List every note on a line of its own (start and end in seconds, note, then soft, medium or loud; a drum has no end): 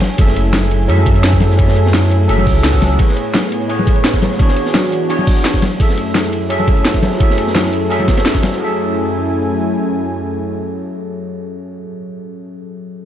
0.00 2.96 A3 medium
0.00 2.96 E4 medium
0.00 8.57 G#5 medium
0.00 snare soft
0.00 closed hi-hat medium
0.00 ride medium
0.00 high conga medium
0.16 0.87 F#1 loud
0.16 0.85 F#3 medium
0.16 0.86 C#4 medium
0.16 0.87 G#4 medium
0.16 kick loud
0.16 closed hi-hat medium
0.16 ride medium
0.20 0.87 A4 medium
0.20 0.88 E5 medium
0.27 snare soft
0.36 closed hi-hat medium
0.36 ride medium
0.53 snare loud
0.53 closed hi-hat medium
0.53 ride medium
0.53 high conga medium
0.62 snare soft
0.71 closed hi-hat medium
0.71 ride medium
0.87 2.28 F#2 medium
0.87 0.93 F#3 medium
0.87 0.93 C#4 medium
0.87 0.93 G#4 medium
0.87 0.94 A4 medium
0.87 0.94 E5 loud
0.87 closed hi-hat medium
0.87 ride medium
0.98 high conga medium
1.06 kick loud
1.06 closed hi-hat medium
1.06 ride medium
1.16 ride soft
1.23 snare loud
1.23 closed hi-hat medium
1.23 ride medium
1.33 kick medium
1.33 snare soft
1.41 snare soft
1.41 closed hi-hat medium
1.41 ride medium
1.41 high conga medium
1.50 snare soft
1.56 2.26 F#3 medium
1.56 2.26 C#4 medium
1.56 2.27 G#4 medium
1.56 2.28 A4 medium
1.56 kick loud
1.56 closed hi-hat medium
1.56 ride medium
1.61 2.28 E5 medium
1.68 snare medium
1.76 closed hi-hat medium
1.76 ride medium
1.86 snare medium
1.94 snare loud
1.94 closed hi-hat medium
1.94 ride medium
1.94 high conga medium
2.04 snare soft
2.11 closed hi-hat medium
2.11 ride medium
2.28 2.48 F#1 loud
2.28 2.33 F#3 medium
2.28 2.33 C#4 medium
2.28 2.34 G#4 medium
2.28 2.34 A4 medium
2.28 2.34 E5 loud
2.28 closed hi-hat medium
2.28 ride medium
2.38 high conga medium
2.46 2.98 C#2 loud
2.46 kick loud
2.46 closed hi-hat medium
2.46 open hi-hat medium
2.64 snare loud
2.64 closed hi-hat medium
2.64 ride medium
2.72 2.96 F#3 medium
2.72 2.97 C#4 medium
2.72 2.97 G#4 medium
2.72 2.97 A4 medium
2.72 2.98 F#5 medium
2.72 kick medium
2.72 snare soft
2.81 snare soft
2.81 closed hi-hat medium
2.81 ride medium
2.81 high conga medium
2.96 4.38 A2 medium
2.96 3.66 A3 medium
2.96 4.38 B3 medium
2.96 3.67 E4 medium
2.96 3.67 G#4 medium
2.96 5.60 C#5 medium
2.96 kick loud
2.96 closed hi-hat medium
2.96 ride medium
3.01 3.68 B4 medium
3.01 3.69 C#5 medium
3.09 snare soft
3.16 closed hi-hat medium
3.16 ride medium
3.34 snare loud
3.34 closed hi-hat medium
3.34 ride medium
3.34 high conga medium
3.44 snare soft
3.52 closed hi-hat medium
3.52 ride medium
3.68 3.73 A3 medium
3.68 3.74 E4 medium
3.68 3.74 G#4 medium
3.68 3.74 B4 medium
3.68 3.75 C#5 medium
3.68 closed hi-hat medium
3.68 ride medium
3.79 high conga medium
3.87 kick loud
3.87 closed hi-hat medium
3.87 ride medium
3.96 ride soft
4.04 snare loud
4.04 closed hi-hat medium
4.04 ride medium
4.14 kick medium
4.14 snare medium
4.22 snare soft
4.22 closed hi-hat medium
4.22 ride medium
4.22 high conga medium
4.32 snare soft
4.37 5.06 E3 medium
4.37 5.61 E3 medium
4.37 5.07 B3 medium
4.37 5.07 D4 medium
4.37 5.61 D4 medium
4.37 5.61 F#4 medium
4.37 5.08 F#4 medium
4.37 kick loud
4.37 closed hi-hat medium
4.37 ride medium
4.41 5.09 G#4 medium
4.41 5.09 C#5 medium
4.48 snare medium
4.56 closed hi-hat medium
4.56 ride medium
4.66 snare soft
4.74 snare loud
4.74 closed hi-hat medium
4.74 ride medium
4.74 high conga medium
4.84 snare soft
4.92 closed hi-hat medium
4.92 ride medium
5.08 5.14 E3 medium
5.08 5.14 B3 medium
5.08 5.14 D4 medium
5.08 5.14 F#4 medium
5.08 5.15 G#4 medium
5.08 5.15 C#5 loud
5.08 closed hi-hat medium
5.08 ride medium
5.19 high conga medium
5.27 kick loud
5.27 closed hi-hat medium
5.27 open hi-hat medium
5.44 snare loud
5.44 closed hi-hat medium
5.44 ride medium
5.54 kick medium
5.54 snare soft
5.62 8.58 F#2 medium
5.62 8.58 A3 medium
5.62 8.58 E4 medium
5.62 snare soft
5.62 closed hi-hat medium
5.62 ride medium
5.62 high conga medium
5.77 6.47 F#3 medium
5.77 6.47 C#4 medium
5.77 6.48 G#4 medium
5.77 kick loud
5.77 closed hi-hat medium
5.77 ride medium
5.81 6.49 A4 medium
5.81 6.49 E5 medium
5.89 snare soft
5.97 closed hi-hat medium
5.97 ride medium
6.14 snare loud
6.14 closed hi-hat medium
6.14 ride medium
6.14 high conga medium
6.24 snare soft
6.33 closed hi-hat medium
6.33 ride medium
6.49 6.54 F#3 medium
6.49 6.54 C#4 medium
6.49 6.55 G#4 medium
6.49 6.55 A4 medium
6.49 6.55 E5 loud
6.49 closed hi-hat medium
6.49 ride medium
6.60 high conga medium
6.67 kick loud
6.67 closed hi-hat medium
6.67 ride medium
6.77 ride soft
6.85 snare loud
6.85 closed hi-hat medium
6.85 ride medium
6.94 kick medium
6.94 snare soft
7.03 snare soft
7.03 closed hi-hat medium
7.03 ride medium
7.03 high conga medium
7.11 snare soft
7.18 7.87 F#3 medium
7.18 7.88 C#4 medium
7.18 7.88 G#4 medium
7.18 kick loud
7.18 closed hi-hat medium
7.18 ride medium
7.22 7.89 A4 medium
7.22 7.90 E5 medium
7.30 snare soft
7.38 closed hi-hat medium
7.38 ride medium
7.47 snare medium
7.55 snare loud
7.55 closed hi-hat medium
7.55 ride medium
7.55 high conga medium
7.64 snare soft
7.73 closed hi-hat medium
7.73 ride medium
7.89 7.94 F#3 medium
7.89 7.95 C#4 medium
7.89 7.95 G#4 medium
7.89 7.95 A4 medium
7.89 7.96 E5 loud
7.89 closed hi-hat medium
7.89 ride medium
8.00 high conga medium
8.08 kick loud
8.08 snare loud
8.08 closed hi-hat medium
8.08 ride medium
8.17 snare loud
8.17 ride medium
8.26 snare loud
8.26 closed hi-hat medium
8.26 ride medium
8.35 kick medium
8.35 snare soft
8.43 snare medium
8.43 closed hi-hat medium
8.43 ride medium
8.43 high conga medium
8.52 snare soft
8.56 11.75 F#3 medium
8.56 11.79 A3 medium
8.56 11.77 C#4 medium
8.60 11.79 F#2 medium
8.60 11.79 C#4 medium
8.60 11.79 E4 medium
8.60 11.79 G#4 medium
8.60 11.81 A4 medium
8.60 11.79 G#5 medium
8.65 11.83 E5 medium